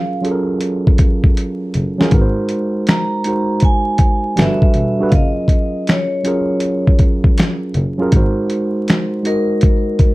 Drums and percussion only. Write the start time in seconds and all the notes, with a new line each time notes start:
0.25 closed hi-hat
0.61 closed hi-hat
0.87 kick
0.98 kick, closed hi-hat
1.24 kick
1.37 closed hi-hat
1.74 closed hi-hat
2.01 snare
2.11 kick, closed hi-hat
2.49 closed hi-hat
2.87 finger snap, snare, closed hi-hat
3.24 closed hi-hat
3.60 kick, closed hi-hat
3.98 kick, closed hi-hat
4.37 finger snap, snare, closed hi-hat
4.62 kick
4.74 closed hi-hat
5.12 kick, closed hi-hat
5.48 kick, closed hi-hat
5.87 finger snap, snare, closed hi-hat
6.25 closed hi-hat
6.60 closed hi-hat
6.87 kick
6.99 kick, closed hi-hat
7.24 kick
7.38 finger snap, snare, closed hi-hat
7.74 closed hi-hat
8.12 kick, closed hi-hat
8.50 closed hi-hat
8.88 finger snap, snare, closed hi-hat
9.25 closed hi-hat
9.61 kick, closed hi-hat
9.99 kick, closed hi-hat